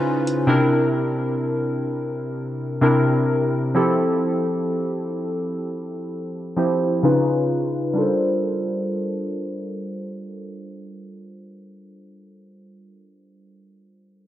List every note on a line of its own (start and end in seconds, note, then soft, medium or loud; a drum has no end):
0.00 0.31 C#3 medium
0.00 0.32 C#4 medium
0.00 0.32 D#4 medium
0.00 0.48 E4 medium
0.00 0.32 F4 medium
0.00 0.32 B4 loud
0.00 0.49 C5 medium
0.27 closed hi-hat medium
0.47 1.64 C3 medium
0.47 1.64 C4 medium
0.47 1.64 D4 medium
0.47 1.64 E4 medium
0.47 1.65 A#4 medium
2.81 3.68 C3 medium
2.81 3.68 C4 medium
2.81 3.68 D4 medium
2.81 3.68 E4 medium
2.81 3.69 A#4 loud
3.75 5.26 F3 medium
3.75 5.27 C4 medium
3.75 5.27 E4 medium
3.75 5.27 G4 medium
3.75 5.27 A4 loud
6.56 7.03 F3 medium
6.56 7.04 C4 medium
6.56 7.04 E4 medium
6.56 7.04 G4 medium
6.56 7.04 C5 medium
7.03 7.81 C#3 medium
7.03 7.81 C#4 medium
7.03 7.82 D#4 medium
7.03 7.82 F4 medium
7.03 7.82 B4 loud
7.93 12.23 G3 medium
7.93 12.25 D4 medium
7.93 12.27 F4 medium
7.98 12.28 A4 medium
7.98 12.30 A#4 medium
7.98 12.31 C5 medium